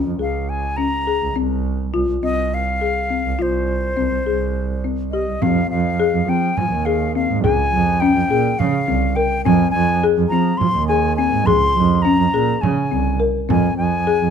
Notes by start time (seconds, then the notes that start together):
0.07 F2
0.19 C#2 G#4 F5
0.49 G#5
0.77 C#4 A#5
1.07 G#4
1.23 C#2
1.36 C2 C4
1.94 C2 F4
2.10 C2
2.23 C2 C4 D#5
2.54 F5
2.81 G#4
3.10 C4
3.25 C2
3.39 C2 F4 C5
3.97 C2 C4
4.12 C2
4.26 C2 G#4
4.84 C4
5.11 G4 D#5
5.29 C2
5.42 F2 C4 F5, frame drum
5.70 F2 F5, frame drum
6.00 G#4
6.14 F2
6.28 F3 C4 G5
6.57 F3 G#5, frame drum
6.72 D#2
6.85 G#4 F5
7.15 C4 F5
7.30 G#2
7.43 C#2 G#4 G#5, frame drum
7.73 F2
8.00 C#4 G5
8.16 F2
8.30 A#2 G#4
8.59 C#3 F5, frame drum
8.88 C2 C4
9.16 A#4 G5
9.45 F2 C4 G#5, frame drum
9.71 F2 G#5
10.03 G#4
10.18 F2
10.29 F3 C4 A#5
10.57 F3 C6, frame drum
10.75 D#2
10.88 G#4 G#5
11.16 C4 G#5
11.33 G#2
11.46 C#2 G#4 C6, frame drum
11.77 F2
12.02 C#4 A#5
12.20 F2
12.34 A#2 G#4
12.61 C#3 G#5, frame drum
12.91 C2 C4
13.20 A#4, frame drum
13.49 F2 C4 G#5, frame drum
13.77 F2 G#5, frame drum
14.07 G#4
14.22 F2